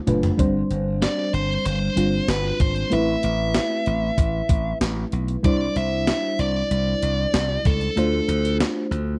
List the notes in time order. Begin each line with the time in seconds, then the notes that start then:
0.07 F#1 A3 D4 F4 B4, closed hi-hat, mid tom
0.23 closed hi-hat, floor tom
0.37 G1 G3 C4 D4 C5, kick, closed hi-hat
0.70 G1, closed hi-hat
1.02 D5, snare, closed hi-hat
1.33 G1 C5, closed hi-hat
1.66 G1 C5, closed hi-hat
1.96 G1 G3 C4 D4 F4, closed hi-hat
2.28 G1 B4, snare, closed hi-hat
2.60 G#1 C5, kick, closed hi-hat
2.76 closed hi-hat
2.90 A1 A3 C4 E4 B4 E5, closed hi-hat
3.23 A1, closed hi-hat
3.54 snare, closed hi-hat
3.86 A1, closed hi-hat
4.18 A1, kick, closed hi-hat
4.49 A1, kick, closed hi-hat
4.81 A1, snare, closed hi-hat
5.12 B1, closed hi-hat
5.28 closed hi-hat
5.43 C2 G3 D4 E4 C5 D5, kick, closed hi-hat
5.76 C2 E5, closed hi-hat
6.07 snare, closed hi-hat
6.39 C2 D5, closed hi-hat
6.71 C2, closed hi-hat
7.02 C2, closed hi-hat
7.34 C2, snare, closed hi-hat
7.65 C#2 A4, kick, closed hi-hat
7.81 closed hi-hat
7.96 D2 A3 D4 F4 C5, closed hi-hat
8.28 D2, closed hi-hat
8.45 closed hi-hat
8.60 snare, closed hi-hat
8.91 D2, closed hi-hat